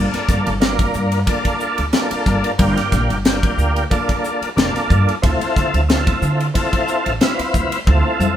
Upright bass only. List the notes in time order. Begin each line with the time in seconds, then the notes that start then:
0.29 G2
0.47 G1
0.95 G2
1.79 D2
2.11 muted upright bass stroke
2.26 G1
2.59 G1
2.93 A#1
3.10 G1
3.58 D2
4.41 muted upright bass stroke
4.57 F1
4.75 muted upright bass stroke
4.90 G2
5.08 muted upright bass stroke
5.24 D2
5.41 muted upright bass stroke
5.57 D3
5.74 D2
6.22 D3
7.06 A1
7.39 muted upright bass stroke
7.55 D2
7.87 D2
8.20 F2